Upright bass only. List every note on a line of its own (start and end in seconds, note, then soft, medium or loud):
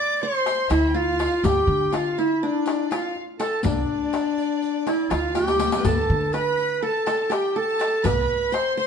0.70 1.26 D2 medium
1.44 1.62 D2 medium
1.67 2.41 D3 medium
3.64 3.83 C2 medium
5.11 5.67 D2 medium
5.85 6.03 D2 medium
6.10 6.83 D3 medium
8.05 8.23 C2 medium